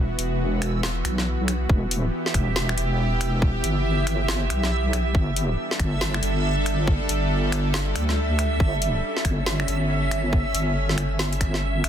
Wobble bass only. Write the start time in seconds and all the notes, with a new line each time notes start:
Already playing: E1
0.19 E1
1.05 B1
1.70 E1
2.34 E1
2.78 E1
3.64 G1
4.50 B1
5.15 G1
5.79 G1
6.23 G1
7.09 G1
7.95 D2
8.60 G1
9.25 G1
9.68 G1
10.54 G1
11.84 G1